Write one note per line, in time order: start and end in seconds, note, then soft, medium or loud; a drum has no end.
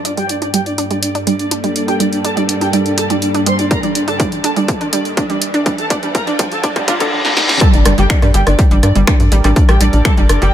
0.00 7.08 G2 medium
0.00 7.12 G2 medium
0.00 7.08 G3 medium
0.00 7.12 G3 medium
0.00 7.08 A#3 medium
0.00 7.08 D4 medium
0.00 7.08 A4 medium
0.00 riser medium
0.05 0.15 D4 medium
0.05 0.12 D4 medium
0.05 0.12 D5 medium
0.05 closed hi-hat loud
0.17 0.29 G3 medium
0.17 0.24 G4 medium
0.17 0.24 G5 medium
0.17 closed hi-hat soft
0.29 0.36 D4 medium
0.29 0.36 D5 medium
0.29 closed hi-hat medium
0.42 0.48 D4 medium
0.42 0.51 D4 medium
0.42 0.48 D5 medium
0.42 closed hi-hat soft
0.54 0.66 G3 medium
0.54 0.60 G4 medium
0.54 0.60 G5 medium
0.54 closed hi-hat loud
0.66 0.72 D4 medium
0.66 0.73 D5 medium
0.66 closed hi-hat soft
0.78 0.88 D4 medium
0.78 closed hi-hat medium
0.91 1.02 G3 medium
0.91 0.97 D4 medium
0.91 0.97 D5 medium
0.91 closed hi-hat soft
1.03 1.09 D4 medium
1.03 1.09 D5 medium
1.03 closed hi-hat loud
1.15 1.24 D4 medium
1.15 closed hi-hat soft
1.27 1.39 G3 medium
1.27 1.33 D4 medium
1.27 1.34 D5 medium
1.27 closed hi-hat medium
1.39 1.46 D4 medium
1.39 1.46 D5 medium
1.39 closed hi-hat soft
1.51 1.61 D4 medium
1.51 closed hi-hat loud
1.64 1.75 G3 medium
1.64 1.70 D4 medium
1.64 1.70 D5 medium
1.64 closed hi-hat soft
1.76 1.82 D4 medium
1.76 1.82 D5 medium
1.76 closed hi-hat medium
1.88 1.97 D4 medium
1.88 1.94 G4 medium
1.88 1.94 G5 loud
1.88 closed hi-hat soft
2.00 2.12 G3 medium
2.00 2.07 D4 medium
2.00 2.07 D5 medium
2.00 closed hi-hat loud
2.13 2.19 D4 medium
2.13 2.19 D5 medium
2.13 closed hi-hat soft
2.24 2.34 D4 medium
2.24 2.31 A4 loud
2.24 2.31 A5 loud
2.24 closed hi-hat medium
2.37 2.48 G3 medium
2.37 2.43 D4 medium
2.37 2.43 D5 medium
2.37 closed hi-hat soft
2.49 2.55 D4 medium
2.49 2.55 D5 medium
2.49 closed hi-hat loud
2.61 2.71 D4 medium
2.61 2.68 G4 medium
2.61 2.68 G5 medium
2.61 closed hi-hat soft
2.73 2.85 G3 medium
2.73 2.80 D4 medium
2.73 2.80 D5 medium
2.73 closed hi-hat medium
2.86 2.92 D4 medium
2.86 2.92 D5 medium
2.86 closed hi-hat soft
2.98 3.07 D4 medium
2.98 3.04 A4 medium
2.98 3.04 A5 medium
2.98 closed hi-hat loud
3.10 3.21 G3 medium
3.10 3.16 D4 medium
3.10 3.16 D5 medium
3.10 closed hi-hat medium
3.22 3.29 D4 medium
3.22 3.29 D5 medium
3.22 closed hi-hat medium
3.34 3.41 D4 medium
3.34 3.44 D4 medium
3.34 3.41 D5 medium
3.34 closed hi-hat soft
3.46 3.58 G3 medium
3.46 3.53 C5 medium
3.46 3.53 C6 medium
3.46 closed hi-hat loud
3.59 3.65 D4 medium
3.59 3.65 D5 medium
3.59 closed hi-hat soft
3.71 3.80 D4 medium
3.71 3.77 A#4 loud
3.71 3.77 A#5 loud
3.71 kick loud
3.71 closed hi-hat medium
3.83 3.95 G3 medium
3.83 3.90 D4 medium
3.83 3.90 D5 medium
3.83 closed hi-hat soft
3.95 4.02 D4 medium
3.95 4.02 D5 medium
3.95 closed hi-hat loud
4.08 4.17 D4 medium
4.08 4.14 A4 medium
4.08 4.14 A5 medium
4.08 closed hi-hat soft
4.20 4.31 G3 medium
4.20 4.26 D4 medium
4.20 4.26 D5 medium
4.20 kick loud
4.20 closed hi-hat medium
4.32 4.38 D4 medium
4.32 4.38 D5 medium
4.32 closed hi-hat soft
4.44 4.54 D4 medium
4.44 4.51 A4 medium
4.44 4.51 A5 medium
4.44 closed hi-hat loud
4.56 4.68 G3 medium
4.56 4.63 D4 medium
4.56 4.63 D5 medium
4.56 closed hi-hat soft
4.68 kick loud
4.68 closed hi-hat medium
4.81 4.87 D4 medium
4.81 4.90 D4 medium
4.81 4.87 D5 medium
4.81 closed hi-hat soft
4.93 5.05 G3 medium
4.93 4.99 D4 medium
4.93 4.99 D5 medium
4.93 closed hi-hat loud
5.05 closed hi-hat soft
5.17 5.27 D4 medium
5.17 5.24 D4 medium
5.17 5.24 D5 medium
5.17 kick loud
5.17 closed hi-hat medium
5.30 5.41 G3 medium
5.30 5.36 D4 medium
5.30 5.36 D5 medium
5.30 closed hi-hat soft
5.42 closed hi-hat loud
5.54 5.63 D4 medium
5.54 5.60 D4 medium
5.54 5.60 D5 medium
5.54 closed hi-hat soft
5.66 5.78 G3 medium
5.66 5.73 D4 medium
5.66 5.73 D5 medium
5.66 kick loud
5.66 closed hi-hat medium
5.78 5.85 A4 loud
5.78 5.85 A5 loud
5.78 closed hi-hat soft
5.90 6.00 D4 medium
5.90 5.97 D4 medium
5.90 5.97 D5 medium
5.90 kick loud
5.90 closed hi-hat loud
6.03 6.14 G3 medium
6.03 6.09 D4 medium
6.03 6.09 D5 medium
6.03 closed hi-hat soft
6.15 6.21 A#4 medium
6.15 6.21 A#5 medium
6.15 kick loud
6.15 closed hi-hat medium
6.27 6.33 D4 medium
6.27 6.36 D4 medium
6.27 6.33 D5 medium
6.27 closed hi-hat soft
6.39 6.51 G3 medium
6.39 6.46 D4 medium
6.39 6.46 D5 medium
6.39 kick loud
6.39 closed hi-hat loud
6.52 6.58 A4 medium
6.52 6.58 A5 medium
6.52 closed hi-hat soft
6.63 6.70 D4 medium
6.63 6.73 D4 medium
6.63 6.70 D5 medium
6.63 kick loud
6.63 closed hi-hat medium
6.63 reverse cymbal medium
6.76 6.87 G3 medium
6.76 6.82 D4 medium
6.76 6.82 D5 medium
6.76 kick medium
6.76 closed hi-hat soft
6.88 7.00 D4 loud
6.88 6.94 F4 medium
6.88 6.95 F5 medium
6.88 kick loud
6.88 closed hi-hat loud
7.00 7.07 D4 medium
7.00 7.10 A4 medium
7.00 7.07 D5 medium
7.00 kick medium
7.00 closed hi-hat medium
7.12 7.19 D4 medium
7.25 7.31 D4 medium
7.25 snare medium
7.37 7.43 D#4 medium
7.37 snare medium
7.49 7.55 D4 medium
7.49 snare medium
7.61 10.54 G3 medium
7.61 7.71 G3 medium
7.61 10.54 G4 medium
7.61 10.54 A4 medium
7.61 7.68 A4 loud
7.61 10.54 A#4 medium
7.61 10.54 D5 medium
7.61 7.68 A5 loud
7.61 kick loud
7.61 cross-stick medium
7.61 closed hi-hat medium
7.73 7.82 G1 medium
7.73 7.80 D4 medium
7.73 7.80 D5 medium
7.73 closed hi-hat soft
7.85 7.95 G1 loud
7.85 7.97 G3 medium
7.85 7.92 D4 medium
7.85 7.92 D5 medium
7.85 cross-stick medium
7.85 closed hi-hat loud
7.98 8.07 G1 medium
7.98 8.07 G3 medium
7.98 8.04 G4 loud
7.98 8.04 G5 loud
7.98 closed hi-hat soft
8.10 8.16 D4 medium
8.10 8.16 D5 medium
8.10 finger snap loud
8.10 kick loud
8.10 closed hi-hat medium
8.22 8.31 G2 medium
8.22 8.33 G3 medium
8.22 8.29 D4 medium
8.22 8.29 D5 medium
8.22 cross-stick medium
8.22 closed hi-hat soft
8.34 8.43 G1 loud
8.34 8.44 G3 medium
8.34 8.41 G4 medium
8.34 8.41 G5 medium
8.34 closed hi-hat loud
8.47 8.56 G1 medium
8.47 8.53 D4 medium
8.47 8.53 D5 medium
8.47 cross-stick medium
8.47 closed hi-hat soft
8.59 8.70 G3 medium
8.59 kick loud
8.59 closed hi-hat medium
8.71 8.80 G1 medium
8.71 8.80 G3 medium
8.71 8.77 D4 medium
8.71 8.77 D5 medium
8.71 closed hi-hat soft
8.83 8.92 G2 loud
8.83 8.90 D4 medium
8.83 8.90 D5 medium
8.83 cross-stick medium
8.83 closed hi-hat loud
8.95 9.04 G1 loud
8.95 9.06 G3 medium
8.95 closed hi-hat soft
9.07 9.17 G3 medium
9.07 9.14 D4 medium
9.07 9.14 D5 medium
9.07 finger snap loud
9.07 kick loud
9.07 cross-stick medium
9.07 closed hi-hat medium
9.20 9.29 G2 medium
9.20 9.26 D4 medium
9.20 9.26 D5 medium
9.20 closed hi-hat soft
9.32 9.41 A1 loud
9.32 9.43 G3 medium
9.32 closed hi-hat loud
9.44 9.53 A1 medium
9.44 9.53 G3 medium
9.44 9.51 D4 medium
9.44 9.51 D5 medium
9.44 cross-stick medium
9.44 closed hi-hat soft
9.56 9.63 D4 medium
9.56 9.63 D5 medium
9.56 kick loud
9.56 closed hi-hat medium
9.69 9.77 A#1 medium
9.69 9.79 G3 medium
9.69 9.75 G4 loud
9.69 9.75 G5 loud
9.69 cross-stick medium
9.69 closed hi-hat soft
9.81 9.90 A#1 loud
9.81 9.90 G3 medium
9.81 9.87 D4 medium
9.81 9.87 D5 medium
9.81 closed hi-hat loud
9.93 10.02 A#1 loud
9.93 9.99 D4 medium
9.93 9.99 D5 medium
9.93 closed hi-hat soft
10.05 10.16 G3 medium
10.05 10.12 A4 medium
10.05 10.12 A5 loud
10.05 finger snap loud
10.05 kick loud
10.05 cross-stick medium
10.05 closed hi-hat medium
10.17 10.26 G1 medium
10.17 10.27 G3 medium
10.17 10.24 D4 medium
10.17 10.24 D5 medium
10.17 closed hi-hat soft
10.29 10.39 G1 loud
10.29 10.36 D4 medium
10.29 10.36 D5 medium
10.29 cross-stick medium
10.29 closed hi-hat loud
10.42 10.51 G1 medium
10.42 10.53 G3 medium
10.42 10.48 G4 medium
10.42 10.48 G5 medium
10.42 closed hi-hat soft